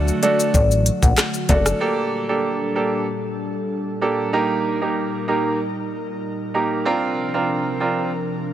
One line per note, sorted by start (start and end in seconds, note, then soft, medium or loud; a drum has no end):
0.00 0.11 D2 loud
0.00 1.77 D3 medium
0.00 1.78 F#3 medium
0.00 0.19 A3 medium
0.00 1.78 A3 medium
0.00 0.19 D4 medium
0.00 0.19 F#4 medium
0.00 1.78 F#4 medium
0.00 0.19 A4 medium
0.08 maracas soft
0.08 shaker soft
0.23 0.52 A3 medium
0.23 0.52 D4 medium
0.23 0.52 F#4 medium
0.23 0.52 A4 medium
0.23 0.34 D5 medium
0.23 closed hi-hat medium
0.23 shaker soft
0.23 maracas soft
0.40 shaker medium
0.40 maracas medium
0.54 0.90 A1 loud
0.54 0.66 D5 medium
0.54 kick medium
0.54 maracas medium
0.54 shaker medium
0.71 shaker medium
0.71 maracas medium
0.86 closed hi-hat medium
0.86 shaker medium
0.86 maracas medium
1.02 1.14 A#1 medium
1.02 1.13 F#5 medium
1.02 kick loud
1.02 shaker medium
1.02 maracas medium
1.17 cross-stick medium
1.17 clap medium
1.17 shaker medium
1.17 maracas medium
1.34 maracas medium
1.34 shaker medium
1.49 1.73 F#1 loud
1.49 1.78 A3 medium
1.49 1.78 D4 medium
1.49 1.78 F#4 medium
1.49 1.78 A4 medium
1.49 1.61 D5 medium
1.49 kick loud
1.49 closed hi-hat medium
1.49 high timbale medium
1.49 shaker soft
1.49 maracas medium
1.66 cross-stick loud
1.66 shaker medium
1.66 maracas medium
1.80 6.82 A#2 medium
1.80 6.82 G3 medium
1.80 2.25 A#3 medium
1.80 2.25 D4 medium
1.80 4.31 D4 medium
1.80 2.25 G4 medium
1.80 2.25 A4 loud
1.80 4.31 A4 medium
2.29 2.72 A#3 medium
2.29 2.72 D4 medium
2.29 2.72 G4 medium
2.29 2.72 A4 medium
2.75 3.04 A#3 medium
2.75 3.05 D4 medium
2.75 3.05 G4 medium
2.75 3.05 A4 medium
4.01 4.31 A#3 medium
4.01 4.31 D4 medium
4.01 4.31 G4 medium
4.01 4.31 A4 medium
4.33 4.77 A#3 medium
4.33 4.77 D#4 medium
4.33 6.83 D#4 medium
4.33 4.78 G4 medium
4.33 6.83 A#4 medium
4.33 4.78 A#4 loud
4.81 5.24 A#3 medium
4.81 5.24 D#4 medium
4.81 5.25 G4 medium
4.81 5.25 A#4 medium
5.28 5.57 A#3 medium
5.28 5.57 D#4 medium
5.28 5.57 G4 medium
5.28 5.57 A#4 medium
6.54 6.83 A#3 medium
6.54 6.83 D#4 medium
6.54 6.84 G4 medium
6.54 6.84 A#4 medium
6.85 8.53 C3 medium
6.85 8.53 F3 medium
6.85 7.30 C4 medium
6.85 7.30 D4 medium
6.85 8.53 D4 medium
6.85 7.30 F4 medium
6.85 8.53 A#4 medium
6.85 7.30 A#4 loud
7.34 7.77 C4 medium
7.34 7.77 D4 medium
7.34 7.77 F4 medium
7.34 7.77 A#4 medium
7.80 8.10 C4 medium
7.80 8.10 D4 medium
7.80 8.10 F4 medium
7.80 8.10 A#4 medium